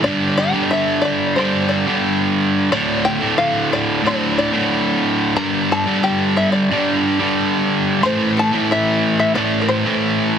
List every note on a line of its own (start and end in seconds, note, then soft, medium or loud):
0.03 0.55 G2 medium
0.03 0.53 D3 loud
0.03 0.53 G3 medium
0.03 0.38 D5 medium
0.37 0.69 G4 medium
0.37 0.72 G5 loud
0.53 1.36 G2 medium
0.53 1.37 D3 medium
0.53 1.36 G3 medium
0.71 0.73 E5 medium
0.71 1.03 E5 medium
1.02 1.05 D5 medium
1.02 1.36 D5 medium
1.36 1.86 G2 medium
1.36 1.87 D3 medium
1.36 1.85 G3 loud
1.36 1.68 C5 medium
1.36 1.69 C6 medium
1.69 1.71 D5 medium
1.69 2.33 D5 medium
1.87 2.70 G2 medium
1.87 2.70 D3 medium
1.87 2.69 G3 medium
2.71 3.22 D2 medium
2.71 3.20 A2 loud
2.71 3.20 D3 loud
2.71 3.03 D5 loud
3.05 3.36 G4 medium
3.05 3.38 G5 loud
3.20 4.02 D2 medium
3.20 4.03 A2 medium
3.20 4.03 D3 medium
3.38 3.69 F5 loud
3.73 4.06 D5 medium
4.03 4.52 D2 medium
4.03 4.53 A2 medium
4.03 4.52 D3 loud
4.03 4.36 C5 medium
4.07 4.37 C6 medium
4.38 5.01 D5 medium
4.53 5.35 D2 medium
4.53 5.36 A2 medium
4.53 5.35 D3 medium
5.35 5.88 G2 loud
5.35 5.86 D3 medium
5.35 5.86 G3 loud
5.35 5.68 A#4 medium
5.35 5.71 A#5 loud
5.72 6.02 A4 medium
5.72 6.05 A5 medium
5.86 6.69 G2 medium
5.86 6.70 D3 medium
5.86 6.69 G3 medium
6.03 6.34 G4 medium
6.03 6.37 G5 medium
6.36 6.52 E5 medium
6.52 7.16 D5 medium
6.70 7.19 G2 medium
6.70 7.20 D3 medium
6.70 7.18 G3 medium
7.20 8.02 G2 medium
7.20 8.03 D3 medium
7.20 8.02 G3 medium
8.02 8.55 A2 medium
8.02 8.54 E3 loud
8.02 8.52 A3 loud
8.02 8.36 C5 medium
8.02 8.34 C6 medium
8.37 8.68 A4 medium
8.37 8.72 A5 loud
8.53 9.33 A2 medium
8.53 9.35 E3 medium
8.53 9.36 A3 medium
8.71 9.18 E5 medium
9.19 9.35 E5 medium
9.34 9.85 A2 loud
9.34 9.85 E3 medium
9.34 9.84 A3 loud
9.34 9.61 D5 medium
9.62 9.69 A#4 medium
9.68 10.32 C5 medium
9.68 10.32 C6 medium
9.86 10.39 A2 medium
9.86 10.39 E3 medium
9.86 10.39 A3 medium